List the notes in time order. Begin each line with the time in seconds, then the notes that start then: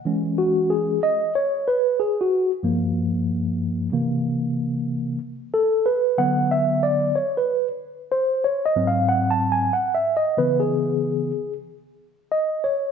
0.05 E3 G#3 C#4
0.38 F#4
0.70 G#4
1.03 D#5
1.35 C#5
1.68 B4
2.00 G#4
2.21 F#4
2.63 G2 F3 A#3
3.92 C3 E3 A#3
5.54 A4
5.86 B4
6.18 D3 F#3 B3 F#5
6.51 E5
6.83 D5
7.16 C#5
7.37 B4
8.12 C5
8.44 C#5
8.66 D#5
8.76 G#2 F#3 C4
8.87 F5
9.09 F#5
9.31 A5
9.52 G#5
9.73 F#5
9.95 E5
10.17 D#5
10.37 C#3 E3 B3 B4
10.60 G#4
12.32 D#5
12.64 C#5